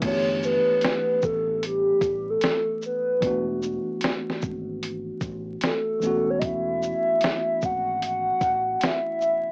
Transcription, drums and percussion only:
0, 0, Header, 1, 2, 480
1, 0, Start_track
1, 0, Tempo, 800000
1, 11, Time_signature, 4, 2, 24, 8
1, 5711, End_track
2, 0, Start_track
2, 0, Title_t, "Drums"
2, 10, Note_on_c, 9, 42, 79
2, 12, Note_on_c, 9, 36, 104
2, 12, Note_on_c, 9, 49, 95
2, 70, Note_off_c, 9, 42, 0
2, 72, Note_off_c, 9, 36, 0
2, 72, Note_off_c, 9, 49, 0
2, 256, Note_on_c, 9, 82, 43
2, 316, Note_off_c, 9, 82, 0
2, 487, Note_on_c, 9, 42, 60
2, 507, Note_on_c, 9, 38, 110
2, 547, Note_off_c, 9, 42, 0
2, 567, Note_off_c, 9, 38, 0
2, 732, Note_on_c, 9, 82, 47
2, 738, Note_on_c, 9, 36, 83
2, 792, Note_off_c, 9, 82, 0
2, 798, Note_off_c, 9, 36, 0
2, 978, Note_on_c, 9, 42, 70
2, 1038, Note_off_c, 9, 42, 0
2, 1207, Note_on_c, 9, 36, 87
2, 1209, Note_on_c, 9, 42, 44
2, 1209, Note_on_c, 9, 82, 44
2, 1267, Note_off_c, 9, 36, 0
2, 1269, Note_off_c, 9, 42, 0
2, 1269, Note_off_c, 9, 82, 0
2, 1447, Note_on_c, 9, 42, 62
2, 1462, Note_on_c, 9, 38, 102
2, 1507, Note_off_c, 9, 42, 0
2, 1522, Note_off_c, 9, 38, 0
2, 1691, Note_on_c, 9, 82, 42
2, 1751, Note_off_c, 9, 82, 0
2, 1932, Note_on_c, 9, 36, 110
2, 1932, Note_on_c, 9, 42, 84
2, 1992, Note_off_c, 9, 36, 0
2, 1992, Note_off_c, 9, 42, 0
2, 2175, Note_on_c, 9, 82, 45
2, 2235, Note_off_c, 9, 82, 0
2, 2406, Note_on_c, 9, 42, 64
2, 2425, Note_on_c, 9, 38, 111
2, 2466, Note_off_c, 9, 42, 0
2, 2485, Note_off_c, 9, 38, 0
2, 2578, Note_on_c, 9, 38, 34
2, 2638, Note_off_c, 9, 38, 0
2, 2651, Note_on_c, 9, 82, 47
2, 2657, Note_on_c, 9, 36, 79
2, 2711, Note_off_c, 9, 82, 0
2, 2717, Note_off_c, 9, 36, 0
2, 2897, Note_on_c, 9, 42, 72
2, 2957, Note_off_c, 9, 42, 0
2, 3126, Note_on_c, 9, 36, 83
2, 3126, Note_on_c, 9, 42, 44
2, 3126, Note_on_c, 9, 82, 44
2, 3186, Note_off_c, 9, 36, 0
2, 3186, Note_off_c, 9, 42, 0
2, 3186, Note_off_c, 9, 82, 0
2, 3366, Note_on_c, 9, 42, 62
2, 3381, Note_on_c, 9, 38, 101
2, 3426, Note_off_c, 9, 42, 0
2, 3441, Note_off_c, 9, 38, 0
2, 3611, Note_on_c, 9, 82, 39
2, 3671, Note_off_c, 9, 82, 0
2, 3848, Note_on_c, 9, 42, 85
2, 3850, Note_on_c, 9, 36, 108
2, 3908, Note_off_c, 9, 42, 0
2, 3910, Note_off_c, 9, 36, 0
2, 4095, Note_on_c, 9, 82, 44
2, 4155, Note_off_c, 9, 82, 0
2, 4325, Note_on_c, 9, 42, 58
2, 4345, Note_on_c, 9, 38, 104
2, 4385, Note_off_c, 9, 42, 0
2, 4405, Note_off_c, 9, 38, 0
2, 4572, Note_on_c, 9, 82, 49
2, 4577, Note_on_c, 9, 36, 72
2, 4632, Note_off_c, 9, 82, 0
2, 4637, Note_off_c, 9, 36, 0
2, 4815, Note_on_c, 9, 42, 71
2, 4875, Note_off_c, 9, 42, 0
2, 5046, Note_on_c, 9, 36, 92
2, 5047, Note_on_c, 9, 42, 42
2, 5047, Note_on_c, 9, 82, 43
2, 5106, Note_off_c, 9, 36, 0
2, 5107, Note_off_c, 9, 42, 0
2, 5107, Note_off_c, 9, 82, 0
2, 5286, Note_on_c, 9, 42, 63
2, 5301, Note_on_c, 9, 38, 102
2, 5346, Note_off_c, 9, 42, 0
2, 5361, Note_off_c, 9, 38, 0
2, 5528, Note_on_c, 9, 82, 42
2, 5588, Note_off_c, 9, 82, 0
2, 5711, End_track
0, 0, End_of_file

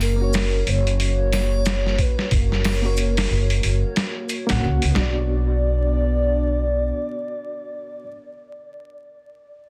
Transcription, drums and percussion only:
0, 0, Header, 1, 2, 480
1, 0, Start_track
1, 0, Key_signature, 2, "minor"
1, 0, Tempo, 659341
1, 1688, Time_signature, 4, 2, 24, 8
1, 7056, End_track
2, 0, Start_track
2, 0, Title_t, "Drums"
2, 6, Note_on_c, 9, 81, 62
2, 9, Note_on_c, 9, 46, 66
2, 79, Note_off_c, 9, 81, 0
2, 82, Note_off_c, 9, 46, 0
2, 243, Note_on_c, 9, 82, 83
2, 249, Note_on_c, 9, 46, 77
2, 255, Note_on_c, 9, 38, 116
2, 316, Note_off_c, 9, 82, 0
2, 322, Note_off_c, 9, 46, 0
2, 328, Note_off_c, 9, 38, 0
2, 487, Note_on_c, 9, 46, 70
2, 560, Note_off_c, 9, 46, 0
2, 632, Note_on_c, 9, 42, 45
2, 705, Note_off_c, 9, 42, 0
2, 726, Note_on_c, 9, 46, 96
2, 799, Note_off_c, 9, 46, 0
2, 964, Note_on_c, 9, 46, 72
2, 969, Note_on_c, 9, 81, 85
2, 970, Note_on_c, 9, 38, 46
2, 1037, Note_off_c, 9, 46, 0
2, 1042, Note_off_c, 9, 81, 0
2, 1043, Note_off_c, 9, 38, 0
2, 1205, Note_on_c, 9, 82, 76
2, 1206, Note_on_c, 9, 46, 83
2, 1212, Note_on_c, 9, 38, 108
2, 1278, Note_off_c, 9, 82, 0
2, 1279, Note_off_c, 9, 46, 0
2, 1284, Note_off_c, 9, 38, 0
2, 1358, Note_on_c, 9, 38, 39
2, 1431, Note_off_c, 9, 38, 0
2, 1445, Note_on_c, 9, 36, 95
2, 1445, Note_on_c, 9, 46, 69
2, 1518, Note_off_c, 9, 36, 0
2, 1518, Note_off_c, 9, 46, 0
2, 1593, Note_on_c, 9, 38, 45
2, 1666, Note_off_c, 9, 38, 0
2, 1683, Note_on_c, 9, 46, 94
2, 1685, Note_on_c, 9, 36, 112
2, 1756, Note_off_c, 9, 46, 0
2, 1758, Note_off_c, 9, 36, 0
2, 1835, Note_on_c, 9, 38, 37
2, 1908, Note_off_c, 9, 38, 0
2, 1925, Note_on_c, 9, 46, 71
2, 1926, Note_on_c, 9, 81, 64
2, 1931, Note_on_c, 9, 38, 105
2, 1998, Note_off_c, 9, 46, 0
2, 1999, Note_off_c, 9, 81, 0
2, 2004, Note_off_c, 9, 38, 0
2, 2162, Note_on_c, 9, 82, 80
2, 2167, Note_on_c, 9, 46, 64
2, 2235, Note_off_c, 9, 82, 0
2, 2240, Note_off_c, 9, 46, 0
2, 2309, Note_on_c, 9, 46, 76
2, 2315, Note_on_c, 9, 38, 106
2, 2382, Note_off_c, 9, 46, 0
2, 2388, Note_off_c, 9, 38, 0
2, 2549, Note_on_c, 9, 46, 60
2, 2621, Note_off_c, 9, 46, 0
2, 2645, Note_on_c, 9, 46, 83
2, 2717, Note_off_c, 9, 46, 0
2, 2884, Note_on_c, 9, 46, 85
2, 2890, Note_on_c, 9, 38, 111
2, 2957, Note_off_c, 9, 46, 0
2, 2963, Note_off_c, 9, 38, 0
2, 3125, Note_on_c, 9, 46, 58
2, 3125, Note_on_c, 9, 82, 72
2, 3198, Note_off_c, 9, 46, 0
2, 3198, Note_off_c, 9, 82, 0
2, 3268, Note_on_c, 9, 46, 75
2, 3274, Note_on_c, 9, 38, 98
2, 3341, Note_off_c, 9, 46, 0
2, 3347, Note_off_c, 9, 38, 0
2, 3509, Note_on_c, 9, 46, 65
2, 3582, Note_off_c, 9, 46, 0
2, 3604, Note_on_c, 9, 43, 105
2, 3610, Note_on_c, 9, 38, 112
2, 3677, Note_off_c, 9, 43, 0
2, 3683, Note_off_c, 9, 38, 0
2, 7056, End_track
0, 0, End_of_file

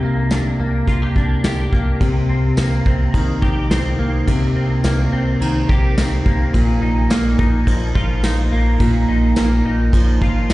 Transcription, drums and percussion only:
0, 0, Header, 1, 2, 480
1, 0, Start_track
1, 0, Key_signature, -3, "minor"
1, 0, Tempo, 566038
1, 1702, Time_signature, 4, 2, 24, 8
1, 8934, End_track
2, 0, Start_track
2, 0, Title_t, "Drums"
2, 260, Note_on_c, 9, 54, 62
2, 262, Note_on_c, 9, 42, 69
2, 264, Note_on_c, 9, 38, 100
2, 345, Note_off_c, 9, 54, 0
2, 347, Note_off_c, 9, 42, 0
2, 349, Note_off_c, 9, 38, 0
2, 742, Note_on_c, 9, 36, 71
2, 746, Note_on_c, 9, 42, 81
2, 827, Note_off_c, 9, 36, 0
2, 831, Note_off_c, 9, 42, 0
2, 983, Note_on_c, 9, 36, 74
2, 1067, Note_off_c, 9, 36, 0
2, 1222, Note_on_c, 9, 38, 115
2, 1222, Note_on_c, 9, 54, 71
2, 1223, Note_on_c, 9, 42, 67
2, 1307, Note_off_c, 9, 38, 0
2, 1307, Note_off_c, 9, 54, 0
2, 1308, Note_off_c, 9, 42, 0
2, 1464, Note_on_c, 9, 36, 74
2, 1549, Note_off_c, 9, 36, 0
2, 1703, Note_on_c, 9, 36, 91
2, 1705, Note_on_c, 9, 51, 60
2, 1788, Note_off_c, 9, 36, 0
2, 1790, Note_off_c, 9, 51, 0
2, 2180, Note_on_c, 9, 54, 67
2, 2182, Note_on_c, 9, 51, 58
2, 2184, Note_on_c, 9, 38, 121
2, 2265, Note_off_c, 9, 54, 0
2, 2267, Note_off_c, 9, 51, 0
2, 2268, Note_off_c, 9, 38, 0
2, 2425, Note_on_c, 9, 36, 93
2, 2510, Note_off_c, 9, 36, 0
2, 2663, Note_on_c, 9, 36, 87
2, 2667, Note_on_c, 9, 51, 59
2, 2748, Note_off_c, 9, 36, 0
2, 2752, Note_off_c, 9, 51, 0
2, 2903, Note_on_c, 9, 36, 80
2, 2988, Note_off_c, 9, 36, 0
2, 3146, Note_on_c, 9, 38, 108
2, 3146, Note_on_c, 9, 54, 68
2, 3147, Note_on_c, 9, 51, 62
2, 3231, Note_off_c, 9, 38, 0
2, 3231, Note_off_c, 9, 54, 0
2, 3232, Note_off_c, 9, 51, 0
2, 3626, Note_on_c, 9, 36, 81
2, 3626, Note_on_c, 9, 51, 68
2, 3711, Note_off_c, 9, 36, 0
2, 3711, Note_off_c, 9, 51, 0
2, 4104, Note_on_c, 9, 54, 62
2, 4106, Note_on_c, 9, 51, 60
2, 4108, Note_on_c, 9, 38, 107
2, 4189, Note_off_c, 9, 54, 0
2, 4191, Note_off_c, 9, 51, 0
2, 4193, Note_off_c, 9, 38, 0
2, 4592, Note_on_c, 9, 51, 66
2, 4677, Note_off_c, 9, 51, 0
2, 4828, Note_on_c, 9, 36, 83
2, 4913, Note_off_c, 9, 36, 0
2, 5069, Note_on_c, 9, 38, 123
2, 5069, Note_on_c, 9, 54, 73
2, 5070, Note_on_c, 9, 51, 67
2, 5153, Note_off_c, 9, 54, 0
2, 5154, Note_off_c, 9, 38, 0
2, 5155, Note_off_c, 9, 51, 0
2, 5308, Note_on_c, 9, 36, 86
2, 5393, Note_off_c, 9, 36, 0
2, 5548, Note_on_c, 9, 36, 93
2, 5550, Note_on_c, 9, 51, 59
2, 5632, Note_off_c, 9, 36, 0
2, 5635, Note_off_c, 9, 51, 0
2, 6024, Note_on_c, 9, 54, 65
2, 6025, Note_on_c, 9, 51, 60
2, 6027, Note_on_c, 9, 38, 112
2, 6108, Note_off_c, 9, 54, 0
2, 6110, Note_off_c, 9, 51, 0
2, 6112, Note_off_c, 9, 38, 0
2, 6267, Note_on_c, 9, 36, 114
2, 6352, Note_off_c, 9, 36, 0
2, 6505, Note_on_c, 9, 36, 82
2, 6508, Note_on_c, 9, 51, 69
2, 6590, Note_off_c, 9, 36, 0
2, 6593, Note_off_c, 9, 51, 0
2, 6745, Note_on_c, 9, 36, 88
2, 6830, Note_off_c, 9, 36, 0
2, 6984, Note_on_c, 9, 38, 125
2, 6984, Note_on_c, 9, 54, 73
2, 6985, Note_on_c, 9, 51, 68
2, 7069, Note_off_c, 9, 38, 0
2, 7069, Note_off_c, 9, 54, 0
2, 7070, Note_off_c, 9, 51, 0
2, 7463, Note_on_c, 9, 36, 97
2, 7463, Note_on_c, 9, 51, 63
2, 7548, Note_off_c, 9, 36, 0
2, 7548, Note_off_c, 9, 51, 0
2, 7938, Note_on_c, 9, 54, 63
2, 7940, Note_on_c, 9, 51, 56
2, 7942, Note_on_c, 9, 38, 100
2, 8023, Note_off_c, 9, 54, 0
2, 8025, Note_off_c, 9, 51, 0
2, 8027, Note_off_c, 9, 38, 0
2, 8422, Note_on_c, 9, 36, 78
2, 8426, Note_on_c, 9, 51, 63
2, 8507, Note_off_c, 9, 36, 0
2, 8511, Note_off_c, 9, 51, 0
2, 8664, Note_on_c, 9, 36, 84
2, 8748, Note_off_c, 9, 36, 0
2, 8903, Note_on_c, 9, 38, 119
2, 8903, Note_on_c, 9, 54, 73
2, 8905, Note_on_c, 9, 51, 69
2, 8934, Note_off_c, 9, 38, 0
2, 8934, Note_off_c, 9, 51, 0
2, 8934, Note_off_c, 9, 54, 0
2, 8934, End_track
0, 0, End_of_file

